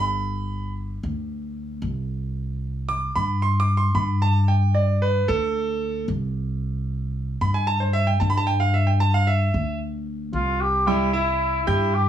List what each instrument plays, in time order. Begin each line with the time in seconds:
Already playing: upright bass G1, grand piano B5
1.03 upright bass D2
1.82 upright bass C2
2.89 grand piano D6
3.15 upright bass G2, grand piano B5
3.42 grand piano C6
3.60 grand piano D6
3.77 grand piano C6
3.95 upright bass G2, grand piano B5
4.22 grand piano A5
4.48 grand piano G5
4.74 grand piano D5
5.02 grand piano B4
5.28 upright bass D2, grand piano A4
6.08 upright bass C2
7.41 upright bass G2, grand piano B5
7.54 grand piano G#5
7.67 grand piano A5
7.80 grand piano C5
7.93 grand piano E5
8.07 grand piano G5
8.20 upright bass G2, grand piano A5
8.30 grand piano B5
8.37 grand piano A5
8.47 grand piano G5
8.60 grand piano F5
8.74 grand piano E5
8.87 grand piano G5
9.00 grand piano A5
9.14 grand piano F5
9.27 grand piano E5
9.54 upright bass D2
10.33 upright bass C2, cor anglais F4
10.61 cor anglais G4
10.87 grand piano G3 G4 G5, cor anglais E4
11.13 grand piano E4 E5 E6, cor anglais E4
11.67 upright bass G2, cor anglais E4, grand piano G4 G5 G6
11.94 cor anglais G4